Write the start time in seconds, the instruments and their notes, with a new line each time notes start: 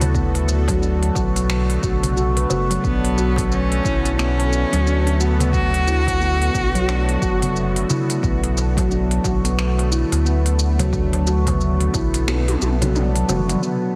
Already playing: sub bass D2, synth drone D3 A3 B3 F#4 A4, handpan E4
0.01 open hi-hat, darbuka ka, darbuka dum, shaker
0.15 handpan B3, kick, shaker
0.34 open hi-hat, darbuka tek
0.48 darbuka ka, shaker
0.68 handpan F#3, kick, open hi-hat, darbuka tek, shaker
0.82 handpan D4, shaker
1.03 open hi-hat
1.15 sub bass B1, handpan F#4, kick, darbuka tek, shaker
1.36 handpan B3, open hi-hat, shaker
1.50 finger snap, darbuka ka, shaker
1.70 open hi-hat
1.83 sub bass B1, handpan F#4, kick, shaker
2.03 open hi-hat, darbuka dum, shaker
2.17 handpan F#4, shaker
2.37 handpan B4, open hi-hat
2.50 sub bass F#1, handpan F#4, darbuka ka, darbuka tek, darbuka dum, shaker
2.70 handpan F#3, open hi-hat, shaker
2.83 sub bass B1, cello B3, handpan D4, kick, shaker
3.05 open hi-hat
3.18 handpan F#4, darbuka ka, shaker
3.36 handpan B3, kick, open hi-hat, darbuka tek, shaker
3.51 cello C#4, shaker
3.72 open hi-hat
3.84 sub bass B1, handpan E4, kick, darbuka tek, shaker
4.05 open hi-hat, shaker
4.18 handpan B3, cello C#4, finger snap, darbuka ka, shaker
4.38 open hi-hat, darbuka ka
4.53 shaker
4.73 sub bass D2, handpan F#3, open hi-hat, darbuka ka, darbuka tek, shaker
4.86 handpan D4, shaker
5.07 open hi-hat
5.20 cello B3, handpan F#4, shaker
5.40 handpan B3, open hi-hat, darbuka ka, darbuka dum, shaker
5.53 cello F#4, kick, shaker
5.74 open hi-hat
5.87 handpan E4, darbuka ka, shaker
6.07 kick, open hi-hat, darbuka tek, shaker
6.21 handpan B3, shaker
6.42 open hi-hat
6.54 sub bass B1, kick, darbuka tek, shaker
6.75 handpan F#3, open hi-hat, shaker
6.88 handpan D4, finger snap, darbuka ka, shaker
7.09 open hi-hat
7.22 sub bass F#1, handpan F#4, kick, shaker
7.42 handpan B3, open hi-hat, darbuka dum, shaker
7.56 shaker
7.76 open hi-hat
7.90 handpan E4, darbuka ka, darbuka tek, darbuka dum, shaker
8.10 open hi-hat, shaker
8.23 sub bass B1, handpan B3, kick, shaker
8.44 open hi-hat
8.57 darbuka ka, shaker
8.77 handpan F#3, kick, open hi-hat, darbuka tek, shaker
8.91 handpan D4, shaker
9.11 open hi-hat
9.24 sub bass B1, handpan F#4, kick, darbuka tek, shaker
9.44 handpan B3, open hi-hat, shaker
9.59 finger snap, darbuka ka, shaker
9.79 open hi-hat, darbuka ka
9.92 handpan E4, shaker
10.12 sub bass D2, open hi-hat, darbuka ka, darbuka tek, shaker
10.25 handpan B3, shaker
10.46 open hi-hat
10.59 shaker
10.79 handpan F#3, open hi-hat, darbuka ka, darbuka dum, shaker
10.93 handpan D4, kick, shaker
11.13 open hi-hat, darbuka tek
11.27 handpan F#4, darbuka ka, shaker
11.47 handpan B3, kick, open hi-hat, darbuka tek, darbuka dum, shaker
11.61 shaker
11.80 open hi-hat
11.94 sub bass B1, handpan E4, kick, darbuka tek, shaker
12.14 open hi-hat, shaker
12.28 handpan B3, finger snap, high tom, darbuka ka, shaker
12.48 open hi-hat, high tom
12.61 sub bass B1, high tom, shaker
12.81 handpan F#3, open hi-hat, mid tom, darbuka dum, shaker
12.95 handpan D4, mid tom, shaker
13.16 open hi-hat
13.28 sub bass F#1, handpan F#4, mid tom, darbuka ka, darbuka tek, darbuka dum, shaker
13.49 handpan B3, mid tom, open hi-hat, shaker
13.62 synth drone D3, handpan B3, shaker
13.92 synth drone A3